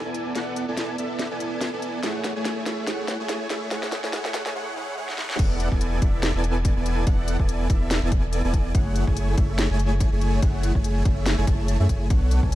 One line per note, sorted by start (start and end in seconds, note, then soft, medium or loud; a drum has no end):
0.05 0.34 E1 medium
0.05 0.33 B3 medium
0.05 0.33 E4 medium
0.05 0.33 A4 medium
0.05 0.33 D5 medium
0.05 0.33 G#5 medium
0.14 closed hi-hat medium
0.35 0.66 E1 medium
0.35 0.65 B3 medium
0.35 0.65 E4 medium
0.35 0.65 A4 medium
0.35 0.65 D5 medium
0.35 0.65 F#5 loud
0.35 snare medium
0.35 closed hi-hat medium
0.56 closed hi-hat medium
0.68 0.97 E1 loud
0.68 0.96 B3 medium
0.68 0.96 E4 medium
0.68 0.96 A4 medium
0.68 0.96 D5 medium
0.68 0.96 G#5 loud
0.77 snare medium
0.77 closed hi-hat medium
0.98 1.29 E1 loud
0.98 1.28 B3 medium
0.98 1.28 E4 medium
0.98 1.28 A4 medium
0.98 1.28 D5 medium
0.98 1.28 E5 medium
0.98 closed hi-hat medium
1.19 snare medium
1.19 closed hi-hat medium
1.31 1.71 E1 loud
1.31 1.70 B3 loud
1.31 1.70 E4 medium
1.31 1.70 A4 medium
1.31 1.70 D5 medium
1.31 1.70 G#5 loud
1.40 closed hi-hat medium
1.61 snare medium
1.61 closed hi-hat medium
1.73 2.01 E1 loud
1.73 2.01 B3 medium
1.73 2.01 E4 medium
1.73 2.01 A4 medium
1.73 2.01 D5 medium
1.73 2.01 G#5 medium
1.82 closed hi-hat medium
2.03 2.34 F#1 medium
2.03 2.33 A3 medium
2.03 2.33 E4 medium
2.03 2.33 G#4 medium
2.03 2.33 C#5 medium
2.03 2.33 F#5 medium
2.03 snare medium
2.03 closed hi-hat medium
2.24 snare medium
2.24 closed hi-hat medium
2.36 2.64 F#1 medium
2.36 2.64 A3 medium
2.36 2.64 E4 medium
2.36 2.64 G#4 medium
2.36 2.64 C#5 medium
2.36 2.64 G#5 medium
2.45 snare medium
2.45 closed hi-hat medium
2.66 2.85 F#1 medium
2.66 2.86 A3 medium
2.66 2.86 E4 medium
2.66 2.86 G#4 medium
2.66 2.86 C#5 medium
2.66 2.86 E5 medium
2.66 snare medium
2.66 closed hi-hat medium
2.87 3.18 F#1 medium
2.87 3.17 A3 medium
2.87 3.17 E4 medium
2.87 3.17 G#4 medium
2.87 3.17 C#5 medium
2.87 3.17 F#5 medium
2.87 snare medium
2.87 closed hi-hat medium
3.08 snare medium
3.08 closed hi-hat medium
3.20 3.48 F#1 loud
3.20 3.48 A3 medium
3.20 3.48 E4 medium
3.20 3.48 G#4 medium
3.20 3.48 C#5 medium
3.20 3.48 G#5 loud
3.29 snare medium
3.29 closed hi-hat medium
3.50 3.69 F#1 loud
3.50 3.70 A3 medium
3.50 3.70 E4 medium
3.50 3.70 G#4 medium
3.50 3.70 C#5 medium
3.50 3.70 E5 medium
3.50 snare medium
3.50 closed hi-hat medium
3.71 4.01 F#1 loud
3.71 4.01 A3 medium
3.71 4.01 E4 medium
3.71 4.01 G#4 medium
3.71 4.01 C#5 medium
3.71 4.01 F#5 medium
3.71 snare medium
3.71 closed hi-hat medium
3.83 snare medium
3.92 snare loud
3.92 closed hi-hat medium
4.04 4.12 A3 loud
4.04 4.12 E4 medium
4.04 4.12 G#4 medium
4.04 4.12 C#5 medium
4.04 4.12 G#5 loud
4.04 snare medium
4.13 4.43 F#1 loud
4.13 4.43 A3 medium
4.13 4.43 E4 medium
4.13 4.43 G#4 medium
4.13 4.43 C#5 medium
4.13 4.43 F#5 medium
4.13 snare loud
4.13 closed hi-hat medium
4.25 snare medium
4.34 snare loud
4.34 closed hi-hat medium
4.46 4.54 A3 medium
4.46 4.54 E4 medium
4.46 4.54 G#4 medium
4.46 4.54 C#5 medium
4.46 4.54 G#5 loud
4.46 snare medium
4.55 4.75 A3 medium
4.55 4.75 E4 medium
4.55 4.75 G#4 medium
4.55 4.75 C#5 medium
4.55 4.75 F#5 loud
4.76 4.96 A3 medium
4.76 4.96 E4 medium
4.76 4.96 G#4 medium
4.76 4.96 C#5 medium
4.76 4.96 F#5 loud
4.97 5.17 A3 medium
4.97 5.17 E4 medium
4.97 5.17 G#4 medium
4.97 5.17 C#5 medium
4.97 5.17 F#5 loud
5.09 snare medium
5.18 5.38 A3 medium
5.18 5.38 E4 medium
5.18 5.38 G#4 medium
5.18 5.37 C#5 medium
5.18 5.38 F#5 loud
5.18 snare medium
5.30 snare medium
5.39 5.69 E1 medium
5.39 5.69 B3 medium
5.39 5.69 E4 medium
5.39 5.69 A4 medium
5.39 5.69 D5 medium
5.39 5.69 F#5 loud
5.39 kick loud
5.39 closed hi-hat medium
5.39 crash loud
5.60 closed hi-hat medium
5.72 6.00 E1 medium
5.72 6.00 B3 loud
5.72 6.00 E4 medium
5.72 6.00 A4 medium
5.72 6.00 D5 medium
5.72 6.00 G#5 loud
5.72 kick medium
5.81 closed hi-hat medium
6.02 6.32 E1 loud
6.02 6.32 B3 medium
6.02 6.32 E4 medium
6.02 6.32 A4 medium
6.02 6.32 D5 medium
6.02 6.32 E5 medium
6.02 kick loud
6.02 closed hi-hat medium
6.23 snare loud
6.23 closed hi-hat medium
6.35 6.74 E1 loud
6.35 6.74 B3 medium
6.35 6.74 E4 medium
6.35 6.74 A4 medium
6.35 6.74 D5 medium
6.35 6.74 G#5 loud
6.44 closed hi-hat medium
6.65 kick loud
6.65 closed hi-hat medium
6.76 7.05 E1 loud
6.76 7.05 B3 medium
6.76 7.05 E4 medium
6.76 7.05 A4 medium
6.76 7.05 D5 medium
6.76 7.05 G#5 medium
6.86 closed hi-hat medium
7.07 7.37 E1 medium
7.07 7.37 B3 medium
7.07 7.37 E4 medium
7.07 7.37 A4 medium
7.07 7.37 D5 medium
7.07 7.37 F#5 loud
7.07 kick loud
7.07 closed hi-hat medium
7.28 closed hi-hat medium
7.40 7.68 E1 medium
7.40 7.68 B3 loud
7.40 7.68 E4 medium
7.40 7.68 A4 medium
7.40 7.68 D5 medium
7.40 7.68 G#5 loud
7.40 kick medium
7.49 closed hi-hat medium
7.70 8.00 E1 loud
7.70 8.00 B3 medium
7.70 8.00 E4 medium
7.70 8.00 A4 medium
7.70 8.00 D5 medium
7.70 8.00 E5 medium
7.70 kick loud
7.70 closed hi-hat medium
7.91 snare loud
7.91 closed hi-hat medium
8.02 8.42 E1 loud
8.02 8.42 B3 medium
8.02 8.42 E4 medium
8.02 8.42 A4 medium
8.02 8.42 D5 medium
8.02 8.42 G#5 loud
8.12 kick loud
8.12 closed hi-hat medium
8.33 closed hi-hat medium
8.44 8.73 E1 medium
8.44 8.72 B3 medium
8.44 8.72 E4 medium
8.44 8.72 A4 medium
8.44 8.72 D5 medium
8.44 8.72 G#5 medium
8.54 kick medium
8.54 closed hi-hat medium
8.75 9.05 F#1 loud
8.75 9.05 A3 medium
8.75 9.05 E4 medium
8.75 9.05 G#4 medium
8.75 9.05 C#5 medium
8.75 9.05 F#5 loud
8.75 kick loud
8.75 closed hi-hat medium
8.96 closed hi-hat medium
9.07 9.36 F#1 loud
9.07 9.35 A3 loud
9.07 9.35 E4 medium
9.07 9.35 G#4 medium
9.07 9.35 C#5 medium
9.07 9.35 G#5 loud
9.07 kick medium
9.17 closed hi-hat medium
9.38 9.68 F#1 loud
9.38 9.67 A3 medium
9.38 9.67 E4 medium
9.38 9.67 G#4 medium
9.38 9.67 C#5 medium
9.38 9.67 E5 medium
9.38 kick loud
9.38 closed hi-hat medium
9.59 snare loud
9.59 closed hi-hat medium
9.70 10.10 F#1 loud
9.70 10.09 A3 loud
9.70 10.09 E4 medium
9.70 10.09 G#4 medium
9.70 10.09 C#5 medium
9.70 10.09 G#5 loud
9.79 closed hi-hat medium
10.00 kick loud
10.00 closed hi-hat medium
10.12 10.41 F#1 loud
10.12 10.40 A3 medium
10.12 10.40 E4 medium
10.12 10.40 G#4 medium
10.12 10.40 C#5 medium
10.12 10.40 G#5 medium
10.21 closed hi-hat medium
10.42 10.73 F#1 medium
10.42 10.72 A3 medium
10.42 10.72 E4 medium
10.42 10.72 G#4 medium
10.42 10.72 C#5 medium
10.42 10.72 F#5 loud
10.42 kick loud
10.42 closed hi-hat medium
10.63 closed hi-hat medium
10.75 11.04 F#1 loud
10.75 11.03 A3 loud
10.75 11.03 E4 medium
10.75 11.03 G#4 medium
10.75 11.03 C#5 medium
10.75 11.03 G#5 loud
10.75 kick medium
10.84 closed hi-hat medium
11.05 11.36 F#1 medium
11.05 11.35 A3 medium
11.05 11.35 E4 medium
11.05 11.35 G#4 medium
11.05 11.35 C#5 medium
11.05 11.35 E5 medium
11.05 kick loud
11.05 closed hi-hat medium
11.26 snare loud
11.26 closed hi-hat medium
11.38 11.46 F#1 loud
11.38 11.46 A3 loud
11.38 11.46 E4 medium
11.38 11.46 G#4 medium
11.38 11.46 C#5 medium
11.38 11.46 G#5 loud
11.47 11.78 F#1 loud
11.47 11.77 A3 loud
11.47 11.77 E4 medium
11.47 11.77 G#4 medium
11.47 11.77 C#5 medium
11.47 11.77 A5 loud
11.47 kick loud
11.47 closed hi-hat medium
11.68 closed hi-hat medium
11.80 11.87 F#2 loud
11.80 11.87 A3 medium
11.80 11.87 E4 medium
11.80 11.87 G#4 medium
11.80 11.87 C#5 medium
11.80 11.87 E5 loud
11.89 12.12 F#1 medium
11.89 12.08 A3 medium
11.89 12.08 E4 medium
11.89 12.08 G#4 medium
11.89 12.08 C#5 medium
11.89 12.08 G#5 medium
11.89 kick medium
11.89 closed hi-hat medium
12.10 12.41 B1 medium
12.10 12.40 B3 medium
12.10 12.40 D4 medium
12.10 12.40 A4 medium
12.10 12.40 C#5 medium
12.10 12.40 F#5 medium
12.10 kick loud
12.10 closed hi-hat medium
12.31 closed hi-hat medium
12.43 12.55 B1 medium
12.43 12.55 B3 loud
12.43 12.55 D4 medium
12.43 12.55 A4 medium
12.43 12.55 C#5 medium
12.43 12.55 G#5 loud
12.43 kick medium